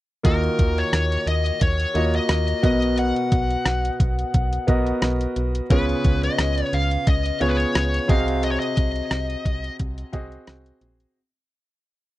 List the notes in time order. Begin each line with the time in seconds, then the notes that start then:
0.23 D#2 D#3 A#3 F4 F#4 A#4 D#5, kick, closed hi-hat
0.43 closed hi-hat
0.59 D#2, kick, closed hi-hat
0.78 C#5, closed hi-hat
0.93 D#2, cross-stick, closed hi-hat
1.12 closed hi-hat
1.26 D#2 D#5, closed hi-hat
1.46 closed hi-hat
1.61 D#2 C#5, kick, closed hi-hat
1.80 closed hi-hat
1.94 D#2 A#3 F4 F#4 D#5, closed hi-hat
2.14 D#5, closed hi-hat
2.29 D#2, cross-stick, closed hi-hat
2.48 closed hi-hat
2.63 B1 B2 B3 F#4 A#4 D#5, kick, closed hi-hat
2.82 closed hi-hat
2.98 F#5, closed hi-hat
3.16 closed hi-hat
3.32 B1, kick, closed hi-hat
3.51 closed hi-hat
3.66 B1, cross-stick, closed hi-hat
3.85 closed hi-hat
4.00 B1, kick, closed hi-hat
4.19 closed hi-hat
4.34 B1, kick, closed hi-hat
4.53 closed hi-hat
4.67 B1 B3 F#4 A#4 D#5, kick, closed hi-hat
4.87 closed hi-hat
5.02 B1, cross-stick, closed hi-hat
5.21 closed hi-hat
5.36 B1, closed hi-hat
5.55 closed hi-hat
5.70 C#2 C#3 B3 F4 G#4 B4 C#5, kick, closed hi-hat
5.89 closed hi-hat
6.04 C#2, kick, closed hi-hat
6.23 D#5, closed hi-hat
6.38 C#2, cross-stick, closed hi-hat
6.58 closed hi-hat
6.73 C#2 F5, closed hi-hat
6.91 closed hi-hat
7.07 C#2 D#5, kick, closed hi-hat
7.26 closed hi-hat
7.40 C#2 B3 F4 G#4 C#5, closed hi-hat
7.49 B4
7.57 C#5, closed hi-hat
7.75 C#2, cross-stick, closed hi-hat
7.94 closed hi-hat
8.08 C2 C3 C4 F#4 G#4 D#5 F5, kick, closed hi-hat
8.28 closed hi-hat
8.43 D#5, closed hi-hat
8.51 C#5
8.60 D#5, closed hi-hat
8.77 C2, kick, closed hi-hat
8.96 closed hi-hat
9.11 C2, cross-stick, closed hi-hat
9.30 closed hi-hat
9.45 C2, kick, closed hi-hat
9.64 closed hi-hat
9.79 C2, kick, closed hi-hat
9.98 closed hi-hat
10.13 C2 C4 F#4 G#4 D#5, kick, closed hi-hat
10.32 closed hi-hat
10.47 C2, cross-stick, closed hi-hat
10.66 closed hi-hat
10.81 A#1, closed hi-hat
11.00 closed hi-hat